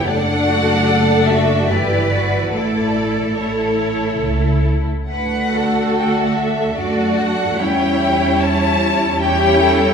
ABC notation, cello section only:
X:1
M:3/4
L:1/8
Q:1/4=73
K:D
V:1 name="Cello section"
D F A F B2 | A4- A z | B A3 F2 | E4 G A |]